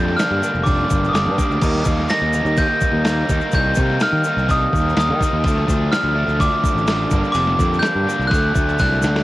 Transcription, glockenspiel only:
Already playing: G6
0.17 F6
0.64 D6
1.09 D#6
1.13 D6
2.10 A#6
2.58 G6
3.55 G6
4.03 F6
4.51 D#6
4.99 D#6
5.92 F6
6.41 D6
7.32 D6
7.79 G6
8.27 F#6
8.80 F#6

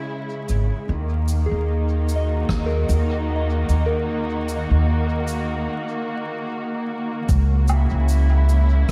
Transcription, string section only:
Already playing: C#3 G#3 E4
0.88 D#3
0.96 A#3
1.37 D#4
2.04 F#4
7.29 C#3
7.60 G#3
7.69 E4

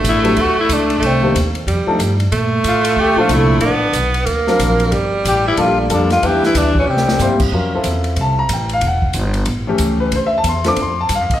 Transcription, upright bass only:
0.04 A1
0.37 D2
0.56 muted upright bass stroke
0.69 C#2
1.02 C2
1.35 D#2
1.67 F2
1.87 muted upright bass stroke
1.99 G2
2.32 A#2
2.64 A2
2.96 D2
3.16 muted upright bass stroke
3.29 C2
3.61 A1
3.93 B1
4.26 D2
4.59 A#1
4.92 G1
5.25 A1
5.57 A#1
5.90 F2
6.22 E2
6.55 D2
6.86 C2
7.19 G2
7.52 F2
7.84 E2
8.16 C2
8.49 A1
8.82 E1
9.14 G1
9.46 A1
9.79 C#2
10.12 D2
10.44 E2
10.77 F2
11.09 G2
11.21 F2
11.31 D2

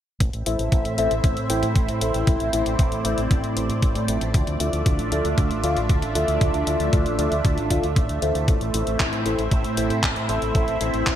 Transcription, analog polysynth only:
0.46 E4 A4 C5 E5
0.98 E4 A4 C5 E5
1.50 E4 A4 C5 G5
2.02 E4 A4 C5 E5
2.53 E4 A4 C5 E5
3.05 E4 A4 C5 E5
3.57 E4 A4 C5 G5
4.08 F4 A4 D5 E5
4.60 F4 A4 D5 E5
5.12 F4 A4 D5 E5
5.64 F4 A4 D5 F5
6.15 F4 A4 D5 E5
6.67 F4 A4 D5 E5
7.19 F4 A4 D5 E5
7.71 F4 A4 D5 F5
8.22 E4 A4 C5 E5
8.74 E4 A4 C5 E5
9.26 E4 A4 C5 E5
9.77 E4 A4 C5 G5
10.29 E4 A4 C5 E5
10.81 E4 A4 C5 E5

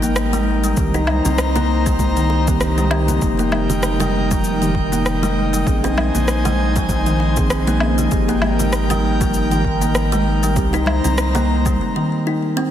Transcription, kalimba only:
0.02 A#3
0.33 G#3
0.64 G3
0.94 D#4
1.25 C4
1.56 A#3
1.86 G3
2.17 D#3
2.48 A#3
2.78 G3
2.91 C4
3.08 A#3
3.39 A#3
3.70 G#3
4.00 G3
4.31 F3
4.62 D#3
4.92 A#3
5.23 G#3
5.53 G3
5.84 C4
6.15 A#3
6.45 G#3
6.76 F3
7.06 D#3
7.37 C4
7.67 A#3
7.98 G#3
8.29 A#3
8.59 G#3
8.90 G3
9.21 F3
9.51 D#3
9.81 A#3
10.12 G#3
10.43 G3
10.74 D#4
11.04 C4
11.35 A#3
11.66 G3
11.96 D#3
12.27 D#4
12.57 C4

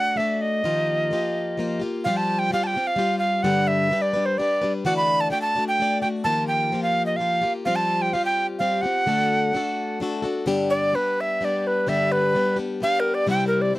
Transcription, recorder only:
Already playing: F#5
0.17 E5
0.41 D#5
2.04 F5
2.17 A5
2.39 G5
2.53 F5
2.64 G5 A5
2.87 F5
3.19 F5
3.43 F#5
3.67 E5
4.02 D5
4.26 C5
4.38 D5
4.85 F#5
4.97 B5
5.21 A5
5.31 G5
5.42 A5
5.68 G5
6.02 G5
6.24 A5
6.48 G5
6.83 F5
7.06 D#5
7.16 F5
7.65 F5
7.76 A5
8.02 G5
8.13 F5
8.25 G5
8.59 F5
8.81 F#5
10.70 D5
10.95 B4
11.21 E5
11.45 D5
11.67 B4
11.89 E5
12.12 B4
12.83 F5
13.00 A#4
13.14 D5
13.30 G5
13.47 A#4
13.62 D5

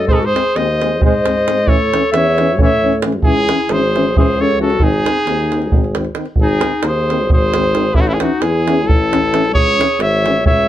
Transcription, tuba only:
Already playing: F#2
0.09 G#2
0.56 D#2
1.03 G#2
1.66 A2
2.13 E2
2.58 A2
3.22 C#2
3.69 G#1
4.16 C#2
4.80 G#1
5.26 D#2
5.72 G#1
6.37 G#1
6.83 D#2
7.29 G#1
7.94 A1
8.41 E2
8.88 A1
9.52 C#2
9.99 G#1
10.45 C#2

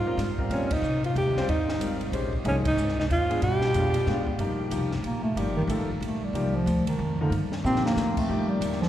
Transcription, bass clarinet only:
Already playing: G#2
0.50 G#2
0.69 G#2
1.02 G#2
1.13 C3
1.45 G#2
2.46 G#2
2.67 G#2
3.00 G2
3.09 G#2
3.40 B2
5.06 A#3
5.23 A3
5.38 G3
5.56 D#3
6.04 A3
6.24 G3
6.55 F3
6.87 D#3
7.21 D3
7.66 C4
7.86 A#3
8.18 A3
8.48 G3
8.81 F3

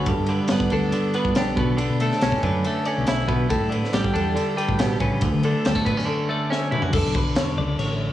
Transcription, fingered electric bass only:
0.07 G1
0.19 G2
0.50 G1
0.72 D2
1.25 G1
1.37 A#1
1.57 B1
1.90 B2
2.22 B1
2.43 F#2
2.98 B1
3.08 B1
3.51 A1
3.61 A2
3.94 A1
4.15 E2
4.69 A1
4.80 A1
5.22 D2
5.34 D3
5.67 D2
5.87 A1
6.93 E1
7.05 B1
7.37 E1
7.59 C#2
7.79 A1

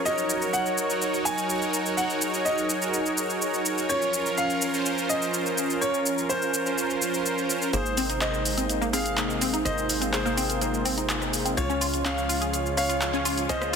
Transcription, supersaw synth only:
0.06 D#4 F#4 A#4 C#5
0.90 D#4 F#4 A#4 C#5
1.97 D#4 F#4 A#4 C#5
2.82 D#4 F#4 A#4 C#5
3.89 C#4 F4 A#4 C#5
4.74 C#4 F4 A#4 C5
5.81 C#4 F4 A#4
6.66 C#4 F4 A#4 C5
7.73 G#4
8.58 D#4 G#4 A#4 C5
9.65 D#4 G#4 A#4 C5
10.50 D#4 G#4 A#4 C5
11.57 C#4 F4 C#5
12.41 C#4 F4 G#4 C#5
13.49 C#4 F4 G#4 F5

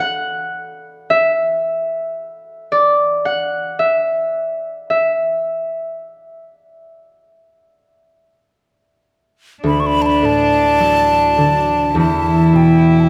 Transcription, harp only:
Already playing: A4
0.00 F#5
1.10 E5
2.72 D5
3.25 F#5
3.79 E5
4.90 E5
9.64 D2
10.22 A2
10.80 F#3
11.37 D3
11.95 E2
12.53 B2

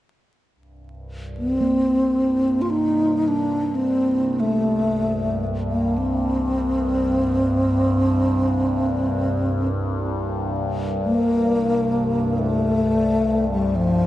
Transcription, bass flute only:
1.39 C4
2.62 F4
2.70 D#4
3.28 D4
3.75 C4
4.40 A3
5.70 A#3
5.98 C4
11.05 A#3
12.38 A3
13.52 G3
13.76 F3

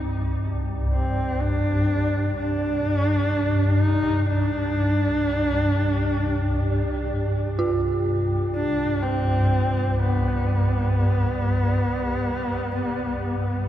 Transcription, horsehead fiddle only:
0.93 C4
1.41 D4
2.37 D4
3.79 D#4
4.26 D4
8.55 D4
9.03 C4
9.99 B3

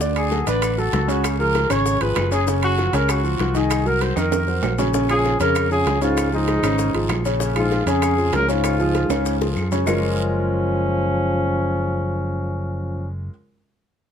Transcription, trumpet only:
0.17 G#4
0.47 B4
0.79 A4
1.10 F#4
1.40 A#4
1.71 C#5
2.02 B4
2.33 G#4
2.64 F#4
2.95 A#4
3.10 F#4
3.57 G#4
3.87 A#4
4.02 C5
4.18 A#4
5.10 G#4
5.41 A#4
5.72 G#4
6.03 F4
6.34 D#4
7.57 F4
7.88 G#4
8.34 A#4
8.50 F4
9.88 C#4

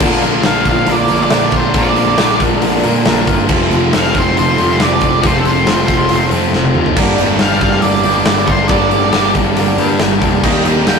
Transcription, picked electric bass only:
0.01 A#1
0.24 A#1
0.44 A#1
0.65 A#1
0.87 A#1
1.09 A#1
1.32 A#1
1.75 A#1
2.18 A#1
2.63 A#1
2.85 A#2
3.07 A#1
3.28 G1
3.50 F1
3.72 F1
3.94 F1
4.15 F1
4.37 F1
4.58 F1
4.80 F1
5.24 F1
5.67 F1
6.10 F1
6.32 F2
6.53 F1
6.75 D#2
6.96 G1
7.20 G1
7.40 G1
7.61 G1
7.83 G1
8.05 G1
8.27 G1
8.70 G1
9.13 G1
9.57 G1
9.78 G2
10.00 G1
10.22 F1
10.43 D#2
10.65 D#2
10.86 D#2

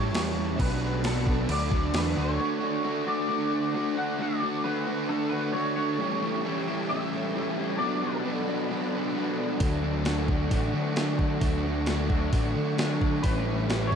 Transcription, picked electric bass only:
Already playing: A2
0.14 E2
0.59 B1
1.49 D2
1.93 E2
2.17 D2
9.60 D2
10.50 A1
10.74 D3
11.42 D2
12.33 A1
12.56 D3
13.24 A1

